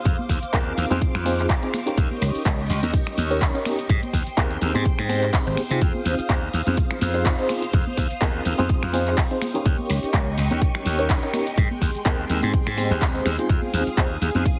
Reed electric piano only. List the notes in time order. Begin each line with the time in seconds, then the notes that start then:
0.53 C4 D#4 F4 G#4 A#4
0.90 C4 D#4 F4 G#4 C5
1.25 C4 D#4 F4 G#4 C5
1.62 C4 D#4 F4 G#4 C5
1.86 C#4 D#4 G4 A#4 C#5
2.45 C#4 G4 C#5
2.82 C#4 D#4 G4 A#4 C#5
3.30 C#4 D#4 G4 A#4 C#5
3.54 C#4 D#4 G4 A#4 C#5
4.37 C4 D#4 G4 G#4 A#4
4.74 C4 D#4 G4 G#4 C5
5.09 C4 D#4 G4 G#4 C5
5.46 C4 D#4 G4 G#4 C5
5.70 C4 D#4 F4 G#4 C5
6.29 C4 D#4 F4 G#4 C5
6.66 C4 D#4 F4 G#4 C5
7.14 C4 D#4 F4 G#4 C5
7.25 D#4 F4 G#4
7.38 C4 D#4 F4 G#4 C5
8.21 C4 D#4 F4 G#4 A#4
8.58 C4 D#4 F4 G#4 C5
8.93 C4 D#4 F4 G#4 C5
9.30 C4 D#4 F4 G#4 C5
9.54 C#4 D#4 G4 A#4 C#5
10.13 C#4 G4 C#5
10.50 C#4 D#4 G4 A#4 C#5
10.98 C#4 D#4 G4 A#4 C#5
11.23 C#4 D#4 G4 A#4 C#5
12.05 C4 D#4 G4 G#4 A#4
12.42 C4 D#4 G4 G#4 C5
12.77 C4 D#4 G4 G#4 C5
13.14 C4 D#4 G4 G#4 C5
13.38 C4 D#4 F4 G#4 C5
13.97 C4 D#4 F4 G#4 C5
14.35 C4 D#4 F4 G#4 C5